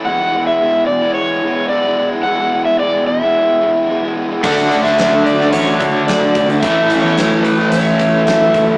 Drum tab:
CC |----------------|----------------|x---------------|----------------|
HH |----------------|----------------|-xxxx-x-x-x-x-xx|x-x-x-x-x-x-x-x-|
SD |----------------|----------------|---oo--o----o---|---oo--o----o---|
BD |----------------|----------------|o---------o---o-|o---------o---o-|